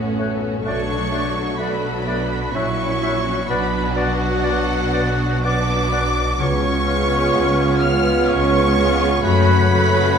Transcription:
Already playing: A1 F#2 A2 C#3 A3 B3 C#4 F#4 A4 C#5 F#5
0.04 C#5
0.19 A3 C#5 F#6
0.35 A4
0.65 B1 B2 F#3 A3 D4 F#4 C#5 D5 C#6 F#6
0.97 F#3
1.11 A3 D5 F#6
1.28 D4
1.58 F#3 A3 D4 F#4 B4 D5 B5 F#6
1.91 A4
2.06 A3 B3 D5 F#6
2.23 D5
2.54 A#1 A#2 F#3 C#4 E4 F#4 C#5 E5 C#6 F#6
2.86 E4
3.02 C#4 E5 F#6
3.18 F#4 C#5
3.48 B1 B2 F#3 B3 D4 F#4 B4 D5 B5 F#6
3.80 F#3
3.94 B3 F#4 D5 F#5 F#6
4.11 D4
4.43 B3 F#4 D5 F#6
4.76 B4
4.93 B3 D5 F#6
5.11 D5
5.44 F#3 B3 D4 F#4 D5 F#5 D6 F#6
5.76 D5
5.92 B3 D5 F#6
6.08 B4
6.38 C#2 C#3 B3 F4 C#5 C#6 F6
6.71 G#3
6.87 G#3 B3 C#4 F4
7.03 C#4
7.34 C#2 C#3 F4
7.66 B4
7.81 G#3 B3 C#4 F4 F5 F6
7.97 C#5
8.28 C#2 C#3 C#5 F5 C#6
8.60 C#5
8.76 G#3 B3 C#4 F4
8.92 B4
9.23 F#1 F#2 F#3 A3 C#4 F#4 B4 B5 F#6
9.56 C#3
9.70 F#3 A3 C#4 F#4
9.87 C#4

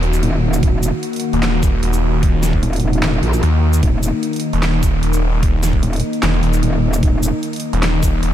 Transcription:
Already playing: D#3 A#3 F#4
0.03 D#1, closed hi-hat
0.13 shaker
0.23 D#1, closed hi-hat
0.53 shaker
0.63 D#1, kick, closed hi-hat
0.83 closed hi-hat, shaker
1.03 closed hi-hat
1.13 closed hi-hat
1.16 closed hi-hat
1.20 closed hi-hat
1.33 D#1, closed hi-hat
1.43 snare, clap, closed hi-hat
1.63 kick, closed hi-hat, shaker
1.73 D#1
1.83 D#1, closed hi-hat
1.93 shaker
2.23 kick, closed hi-hat
2.43 snare, closed hi-hat, shaker
2.53 kick
2.63 D#1, closed hi-hat
2.73 closed hi-hat
2.76 closed hi-hat
2.80 D#1, closed hi-hat
2.93 closed hi-hat
3.03 snare, clap, closed hi-hat
3.23 A#1, closed hi-hat
3.33 shaker
3.43 D#2, closed hi-hat
3.73 shaker
3.83 D#1 D#4, kick, closed hi-hat
4.03 closed hi-hat, shaker
4.23 closed hi-hat
4.33 closed hi-hat
4.36 closed hi-hat
4.40 closed hi-hat
4.53 D#1, closed hi-hat
4.63 snare, clap, closed hi-hat
4.83 kick, closed hi-hat, shaker
4.93 D#1
5.03 D#1, closed hi-hat
5.13 shaker
5.43 kick, closed hi-hat
5.63 snare, closed hi-hat, shaker
5.73 kick
5.83 D#1, closed hi-hat
5.93 closed hi-hat
5.96 closed hi-hat
6.00 closed hi-hat
6.13 closed hi-hat
6.23 E1, snare, clap, closed hi-hat
6.43 D#1, closed hi-hat
6.53 shaker
6.63 D#1, closed hi-hat
6.93 shaker
7.03 D#1, kick, closed hi-hat
7.23 closed hi-hat, shaker
7.43 closed hi-hat
7.53 closed hi-hat
7.56 closed hi-hat
7.60 closed hi-hat
7.73 D#1, closed hi-hat
7.83 snare, clap, closed hi-hat
8.03 kick, closed hi-hat, shaker
8.13 D#1
8.23 D#1, closed hi-hat

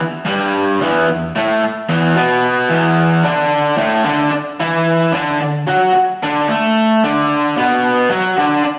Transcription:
0.25 G2 G3
0.81 E2 E3
1.08 E2
1.35 A2 A3
1.62 muted overdriven electric guitar stroke
1.89 E2 E3
2.15 B2 B3
2.70 E2 E3
3.24 D3 D4
3.77 A2 A3
4.04 D3 D4
4.32 muted overdriven electric guitar stroke
4.60 E3 E4
5.14 D3 D4
5.41 D3
5.67 F#3 F#4
5.95 muted overdriven electric guitar stroke
6.23 D3 D4
6.48 A3 A4
7.04 D3 D4
7.57 B2 B3
8.10 F#3 F#4
8.37 D3 D4
8.65 muted overdriven electric guitar stroke

